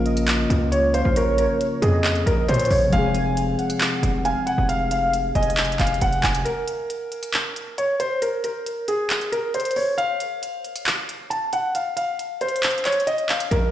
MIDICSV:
0, 0, Header, 1, 6, 480
1, 0, Start_track
1, 0, Tempo, 441176
1, 1263, Time_signature, 4, 2, 24, 8
1, 14921, End_track
2, 0, Start_track
2, 0, Title_t, "Soft synth lead"
2, 0, Program_c, 0, 80
2, 63, Note_on_c, 0, 75, 82
2, 740, Note_off_c, 0, 75, 0
2, 785, Note_on_c, 0, 73, 82
2, 1012, Note_off_c, 0, 73, 0
2, 1023, Note_on_c, 0, 77, 93
2, 1251, Note_off_c, 0, 77, 0
2, 1263, Note_on_c, 0, 73, 118
2, 1940, Note_off_c, 0, 73, 0
2, 1984, Note_on_c, 0, 75, 100
2, 2661, Note_off_c, 0, 75, 0
2, 2702, Note_on_c, 0, 73, 86
2, 2931, Note_off_c, 0, 73, 0
2, 2943, Note_on_c, 0, 73, 92
2, 3171, Note_off_c, 0, 73, 0
2, 3183, Note_on_c, 0, 80, 117
2, 3860, Note_off_c, 0, 80, 0
2, 3901, Note_on_c, 0, 78, 92
2, 4579, Note_off_c, 0, 78, 0
2, 4622, Note_on_c, 0, 77, 90
2, 4851, Note_off_c, 0, 77, 0
2, 4863, Note_on_c, 0, 80, 84
2, 5091, Note_off_c, 0, 80, 0
2, 5102, Note_on_c, 0, 77, 121
2, 5779, Note_off_c, 0, 77, 0
2, 5823, Note_on_c, 0, 80, 106
2, 6980, Note_off_c, 0, 80, 0
2, 14921, End_track
3, 0, Start_track
3, 0, Title_t, "Grand piano"
3, 0, Program_c, 1, 0
3, 0, Note_on_c, 1, 70, 96
3, 738, Note_off_c, 1, 70, 0
3, 780, Note_on_c, 1, 73, 81
3, 982, Note_off_c, 1, 73, 0
3, 1023, Note_on_c, 1, 72, 85
3, 1224, Note_off_c, 1, 72, 0
3, 1272, Note_on_c, 1, 70, 82
3, 1469, Note_off_c, 1, 70, 0
3, 1506, Note_on_c, 1, 70, 74
3, 1956, Note_off_c, 1, 70, 0
3, 1980, Note_on_c, 1, 68, 82
3, 2432, Note_off_c, 1, 68, 0
3, 2466, Note_on_c, 1, 70, 88
3, 2666, Note_off_c, 1, 70, 0
3, 2712, Note_on_c, 1, 72, 92
3, 2909, Note_off_c, 1, 72, 0
3, 2943, Note_on_c, 1, 73, 73
3, 3144, Note_off_c, 1, 73, 0
3, 3184, Note_on_c, 1, 77, 100
3, 4580, Note_off_c, 1, 77, 0
3, 4624, Note_on_c, 1, 80, 83
3, 4825, Note_off_c, 1, 80, 0
3, 4859, Note_on_c, 1, 78, 94
3, 5062, Note_off_c, 1, 78, 0
3, 5100, Note_on_c, 1, 77, 82
3, 5302, Note_off_c, 1, 77, 0
3, 5345, Note_on_c, 1, 77, 77
3, 5795, Note_off_c, 1, 77, 0
3, 5823, Note_on_c, 1, 75, 82
3, 6275, Note_off_c, 1, 75, 0
3, 6306, Note_on_c, 1, 77, 83
3, 6506, Note_off_c, 1, 77, 0
3, 6547, Note_on_c, 1, 78, 93
3, 6747, Note_off_c, 1, 78, 0
3, 6783, Note_on_c, 1, 80, 77
3, 6984, Note_off_c, 1, 80, 0
3, 7019, Note_on_c, 1, 70, 86
3, 8418, Note_off_c, 1, 70, 0
3, 8466, Note_on_c, 1, 73, 81
3, 8666, Note_off_c, 1, 73, 0
3, 8702, Note_on_c, 1, 72, 91
3, 8903, Note_off_c, 1, 72, 0
3, 8943, Note_on_c, 1, 70, 74
3, 9144, Note_off_c, 1, 70, 0
3, 9184, Note_on_c, 1, 70, 72
3, 9635, Note_off_c, 1, 70, 0
3, 9663, Note_on_c, 1, 68, 81
3, 10114, Note_off_c, 1, 68, 0
3, 10143, Note_on_c, 1, 70, 87
3, 10344, Note_off_c, 1, 70, 0
3, 10385, Note_on_c, 1, 72, 84
3, 10585, Note_off_c, 1, 72, 0
3, 10622, Note_on_c, 1, 73, 75
3, 10824, Note_off_c, 1, 73, 0
3, 10855, Note_on_c, 1, 77, 98
3, 12255, Note_off_c, 1, 77, 0
3, 12298, Note_on_c, 1, 81, 83
3, 12501, Note_off_c, 1, 81, 0
3, 12545, Note_on_c, 1, 78, 85
3, 12745, Note_off_c, 1, 78, 0
3, 12784, Note_on_c, 1, 77, 72
3, 12985, Note_off_c, 1, 77, 0
3, 13019, Note_on_c, 1, 77, 76
3, 13472, Note_off_c, 1, 77, 0
3, 13505, Note_on_c, 1, 72, 82
3, 13955, Note_off_c, 1, 72, 0
3, 13985, Note_on_c, 1, 73, 91
3, 14186, Note_off_c, 1, 73, 0
3, 14220, Note_on_c, 1, 75, 91
3, 14422, Note_off_c, 1, 75, 0
3, 14465, Note_on_c, 1, 77, 76
3, 14665, Note_off_c, 1, 77, 0
3, 14699, Note_on_c, 1, 70, 91
3, 14921, Note_off_c, 1, 70, 0
3, 14921, End_track
4, 0, Start_track
4, 0, Title_t, "Synth keys"
4, 0, Program_c, 2, 88
4, 0, Control_c, 2, 64, 127
4, 0, Note_on_c, 2, 49, 77
4, 0, Note_on_c, 2, 53, 64
4, 0, Note_on_c, 2, 58, 65
4, 0, Note_on_c, 2, 61, 71
4, 0, Note_on_c, 2, 65, 73
4, 3108, Note_off_c, 2, 49, 0
4, 3120, Note_on_c, 2, 48, 69
4, 3124, Note_off_c, 2, 53, 0
4, 3140, Note_off_c, 2, 58, 0
4, 3152, Note_on_c, 2, 53, 67
4, 3156, Note_off_c, 2, 61, 0
4, 3171, Note_off_c, 2, 65, 0
4, 3183, Note_on_c, 2, 56, 67
4, 3197, Control_c, 2, 64, 0
4, 3215, Note_on_c, 2, 60, 67
4, 3246, Note_on_c, 2, 68, 80
4, 3372, Control_c, 2, 64, 127
4, 6948, Note_off_c, 2, 48, 0
4, 6964, Note_off_c, 2, 53, 0
4, 6980, Note_off_c, 2, 56, 0
4, 6995, Note_off_c, 2, 60, 0
4, 7011, Note_off_c, 2, 68, 0
4, 7036, Control_c, 2, 64, 0
4, 14921, End_track
5, 0, Start_track
5, 0, Title_t, "808-style bass"
5, 0, Program_c, 3, 38
5, 0, Note_on_c, 3, 34, 117
5, 499, Note_off_c, 3, 34, 0
5, 543, Note_on_c, 3, 37, 104
5, 1119, Note_off_c, 3, 37, 0
5, 1144, Note_on_c, 3, 34, 97
5, 1604, Note_off_c, 3, 34, 0
5, 1983, Note_on_c, 3, 41, 105
5, 2444, Note_off_c, 3, 41, 0
5, 2463, Note_on_c, 3, 34, 102
5, 2693, Note_off_c, 3, 34, 0
5, 2703, Note_on_c, 3, 46, 109
5, 2934, Note_off_c, 3, 46, 0
5, 2943, Note_on_c, 3, 34, 106
5, 3173, Note_off_c, 3, 34, 0
5, 3183, Note_on_c, 3, 29, 115
5, 3874, Note_off_c, 3, 29, 0
5, 4383, Note_on_c, 3, 29, 103
5, 4729, Note_off_c, 3, 29, 0
5, 4983, Note_on_c, 3, 29, 99
5, 5789, Note_off_c, 3, 29, 0
5, 5823, Note_on_c, 3, 29, 100
5, 6284, Note_off_c, 3, 29, 0
5, 6303, Note_on_c, 3, 29, 101
5, 6534, Note_off_c, 3, 29, 0
5, 6544, Note_on_c, 3, 29, 112
5, 6774, Note_off_c, 3, 29, 0
5, 6783, Note_on_c, 3, 29, 108
5, 7013, Note_off_c, 3, 29, 0
5, 14703, Note_on_c, 3, 34, 115
5, 14921, Note_off_c, 3, 34, 0
5, 14921, End_track
6, 0, Start_track
6, 0, Title_t, "Drums"
6, 62, Note_on_c, 9, 42, 45
6, 171, Note_off_c, 9, 42, 0
6, 183, Note_on_c, 9, 42, 78
6, 292, Note_off_c, 9, 42, 0
6, 298, Note_on_c, 9, 42, 78
6, 303, Note_on_c, 9, 39, 125
6, 407, Note_off_c, 9, 42, 0
6, 412, Note_off_c, 9, 39, 0
6, 547, Note_on_c, 9, 42, 79
6, 656, Note_off_c, 9, 42, 0
6, 786, Note_on_c, 9, 42, 77
6, 895, Note_off_c, 9, 42, 0
6, 1023, Note_on_c, 9, 42, 86
6, 1132, Note_off_c, 9, 42, 0
6, 1265, Note_on_c, 9, 42, 86
6, 1374, Note_off_c, 9, 42, 0
6, 1504, Note_on_c, 9, 42, 82
6, 1612, Note_off_c, 9, 42, 0
6, 1749, Note_on_c, 9, 42, 88
6, 1858, Note_off_c, 9, 42, 0
6, 1984, Note_on_c, 9, 42, 75
6, 2093, Note_off_c, 9, 42, 0
6, 2224, Note_on_c, 9, 39, 125
6, 2224, Note_on_c, 9, 42, 79
6, 2332, Note_off_c, 9, 39, 0
6, 2332, Note_off_c, 9, 42, 0
6, 2344, Note_on_c, 9, 42, 45
6, 2453, Note_off_c, 9, 42, 0
6, 2468, Note_on_c, 9, 42, 79
6, 2577, Note_off_c, 9, 42, 0
6, 2705, Note_on_c, 9, 42, 66
6, 2764, Note_off_c, 9, 42, 0
6, 2764, Note_on_c, 9, 42, 63
6, 2824, Note_off_c, 9, 42, 0
6, 2824, Note_on_c, 9, 42, 66
6, 2884, Note_off_c, 9, 42, 0
6, 2884, Note_on_c, 9, 42, 66
6, 2944, Note_on_c, 9, 46, 61
6, 2993, Note_off_c, 9, 42, 0
6, 3052, Note_off_c, 9, 46, 0
6, 3183, Note_on_c, 9, 42, 89
6, 3292, Note_off_c, 9, 42, 0
6, 3422, Note_on_c, 9, 42, 80
6, 3531, Note_off_c, 9, 42, 0
6, 3668, Note_on_c, 9, 42, 87
6, 3777, Note_off_c, 9, 42, 0
6, 3904, Note_on_c, 9, 42, 47
6, 4013, Note_off_c, 9, 42, 0
6, 4023, Note_on_c, 9, 42, 80
6, 4132, Note_off_c, 9, 42, 0
6, 4138, Note_on_c, 9, 42, 78
6, 4142, Note_on_c, 9, 39, 127
6, 4247, Note_off_c, 9, 42, 0
6, 4251, Note_off_c, 9, 39, 0
6, 4387, Note_on_c, 9, 42, 80
6, 4496, Note_off_c, 9, 42, 0
6, 4625, Note_on_c, 9, 42, 78
6, 4734, Note_off_c, 9, 42, 0
6, 4863, Note_on_c, 9, 42, 87
6, 4972, Note_off_c, 9, 42, 0
6, 5104, Note_on_c, 9, 42, 87
6, 5213, Note_off_c, 9, 42, 0
6, 5343, Note_on_c, 9, 42, 84
6, 5452, Note_off_c, 9, 42, 0
6, 5587, Note_on_c, 9, 42, 86
6, 5696, Note_off_c, 9, 42, 0
6, 5824, Note_on_c, 9, 42, 45
6, 5904, Note_off_c, 9, 42, 0
6, 5904, Note_on_c, 9, 42, 63
6, 5984, Note_off_c, 9, 42, 0
6, 5984, Note_on_c, 9, 42, 80
6, 6064, Note_off_c, 9, 42, 0
6, 6064, Note_on_c, 9, 39, 127
6, 6064, Note_on_c, 9, 42, 77
6, 6144, Note_off_c, 9, 42, 0
6, 6144, Note_on_c, 9, 42, 64
6, 6172, Note_off_c, 9, 39, 0
6, 6224, Note_off_c, 9, 42, 0
6, 6224, Note_on_c, 9, 42, 48
6, 6305, Note_off_c, 9, 42, 0
6, 6305, Note_on_c, 9, 39, 68
6, 6305, Note_on_c, 9, 42, 81
6, 6384, Note_off_c, 9, 42, 0
6, 6384, Note_on_c, 9, 42, 64
6, 6414, Note_off_c, 9, 39, 0
6, 6465, Note_off_c, 9, 42, 0
6, 6465, Note_on_c, 9, 42, 46
6, 6544, Note_off_c, 9, 42, 0
6, 6544, Note_on_c, 9, 42, 80
6, 6652, Note_off_c, 9, 42, 0
6, 6664, Note_on_c, 9, 42, 45
6, 6773, Note_off_c, 9, 42, 0
6, 6783, Note_on_c, 9, 39, 106
6, 6784, Note_on_c, 9, 42, 48
6, 6892, Note_off_c, 9, 39, 0
6, 6893, Note_off_c, 9, 42, 0
6, 6904, Note_on_c, 9, 42, 84
6, 7013, Note_off_c, 9, 42, 0
6, 7025, Note_on_c, 9, 42, 83
6, 7133, Note_off_c, 9, 42, 0
6, 7263, Note_on_c, 9, 42, 78
6, 7372, Note_off_c, 9, 42, 0
6, 7508, Note_on_c, 9, 42, 84
6, 7616, Note_off_c, 9, 42, 0
6, 7744, Note_on_c, 9, 42, 44
6, 7853, Note_off_c, 9, 42, 0
6, 7863, Note_on_c, 9, 42, 79
6, 7972, Note_off_c, 9, 42, 0
6, 7979, Note_on_c, 9, 42, 75
6, 7983, Note_on_c, 9, 39, 121
6, 8088, Note_off_c, 9, 42, 0
6, 8092, Note_off_c, 9, 39, 0
6, 8228, Note_on_c, 9, 42, 80
6, 8337, Note_off_c, 9, 42, 0
6, 8466, Note_on_c, 9, 42, 74
6, 8575, Note_off_c, 9, 42, 0
6, 8703, Note_on_c, 9, 42, 85
6, 8812, Note_off_c, 9, 42, 0
6, 8944, Note_on_c, 9, 42, 85
6, 9053, Note_off_c, 9, 42, 0
6, 9182, Note_on_c, 9, 42, 83
6, 9291, Note_off_c, 9, 42, 0
6, 9427, Note_on_c, 9, 42, 87
6, 9536, Note_off_c, 9, 42, 0
6, 9662, Note_on_c, 9, 42, 73
6, 9771, Note_off_c, 9, 42, 0
6, 9902, Note_on_c, 9, 39, 124
6, 9902, Note_on_c, 9, 42, 78
6, 10011, Note_off_c, 9, 39, 0
6, 10011, Note_off_c, 9, 42, 0
6, 10023, Note_on_c, 9, 42, 45
6, 10132, Note_off_c, 9, 42, 0
6, 10147, Note_on_c, 9, 42, 78
6, 10255, Note_off_c, 9, 42, 0
6, 10382, Note_on_c, 9, 42, 61
6, 10442, Note_off_c, 9, 42, 0
6, 10442, Note_on_c, 9, 42, 62
6, 10502, Note_off_c, 9, 42, 0
6, 10502, Note_on_c, 9, 42, 64
6, 10562, Note_off_c, 9, 42, 0
6, 10562, Note_on_c, 9, 42, 64
6, 10621, Note_on_c, 9, 46, 61
6, 10671, Note_off_c, 9, 42, 0
6, 10730, Note_off_c, 9, 46, 0
6, 10862, Note_on_c, 9, 42, 87
6, 10971, Note_off_c, 9, 42, 0
6, 11101, Note_on_c, 9, 42, 79
6, 11210, Note_off_c, 9, 42, 0
6, 11346, Note_on_c, 9, 42, 88
6, 11455, Note_off_c, 9, 42, 0
6, 11582, Note_on_c, 9, 42, 45
6, 11691, Note_off_c, 9, 42, 0
6, 11702, Note_on_c, 9, 42, 80
6, 11811, Note_off_c, 9, 42, 0
6, 11817, Note_on_c, 9, 42, 78
6, 11822, Note_on_c, 9, 39, 118
6, 11926, Note_off_c, 9, 42, 0
6, 11930, Note_off_c, 9, 39, 0
6, 12066, Note_on_c, 9, 42, 77
6, 12175, Note_off_c, 9, 42, 0
6, 12305, Note_on_c, 9, 42, 74
6, 12413, Note_off_c, 9, 42, 0
6, 12542, Note_on_c, 9, 42, 80
6, 12651, Note_off_c, 9, 42, 0
6, 12783, Note_on_c, 9, 42, 88
6, 12892, Note_off_c, 9, 42, 0
6, 13022, Note_on_c, 9, 42, 83
6, 13131, Note_off_c, 9, 42, 0
6, 13266, Note_on_c, 9, 42, 86
6, 13375, Note_off_c, 9, 42, 0
6, 13502, Note_on_c, 9, 42, 45
6, 13584, Note_off_c, 9, 42, 0
6, 13584, Note_on_c, 9, 42, 58
6, 13663, Note_off_c, 9, 42, 0
6, 13663, Note_on_c, 9, 42, 80
6, 13743, Note_off_c, 9, 42, 0
6, 13743, Note_on_c, 9, 39, 122
6, 13743, Note_on_c, 9, 42, 78
6, 13823, Note_off_c, 9, 42, 0
6, 13823, Note_on_c, 9, 42, 63
6, 13852, Note_off_c, 9, 39, 0
6, 13902, Note_off_c, 9, 42, 0
6, 13902, Note_on_c, 9, 42, 44
6, 13983, Note_off_c, 9, 42, 0
6, 13983, Note_on_c, 9, 39, 66
6, 13983, Note_on_c, 9, 42, 80
6, 14062, Note_off_c, 9, 42, 0
6, 14062, Note_on_c, 9, 42, 61
6, 14091, Note_off_c, 9, 39, 0
6, 14143, Note_off_c, 9, 42, 0
6, 14143, Note_on_c, 9, 42, 45
6, 14222, Note_off_c, 9, 42, 0
6, 14222, Note_on_c, 9, 42, 76
6, 14331, Note_off_c, 9, 42, 0
6, 14343, Note_on_c, 9, 42, 45
6, 14451, Note_off_c, 9, 42, 0
6, 14461, Note_on_c, 9, 39, 106
6, 14462, Note_on_c, 9, 42, 48
6, 14570, Note_off_c, 9, 39, 0
6, 14571, Note_off_c, 9, 42, 0
6, 14582, Note_on_c, 9, 42, 80
6, 14691, Note_off_c, 9, 42, 0
6, 14703, Note_on_c, 9, 42, 85
6, 14812, Note_off_c, 9, 42, 0
6, 14921, End_track
0, 0, End_of_file